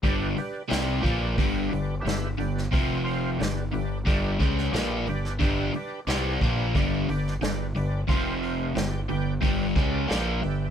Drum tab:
HH |o-o-o-o-o-o-o-o-|o-o-o-o-o-o-o-o-|o-o-o-o-o-o-o-o-|o-o-o-o-o---o-o-|
SD |----o-------o--o|----o------oo--o|----o------oo---|----o-------o---|
BD |o-----o-o-------|o-------o-o-----|o-----o-o-------|o-------o-o-----|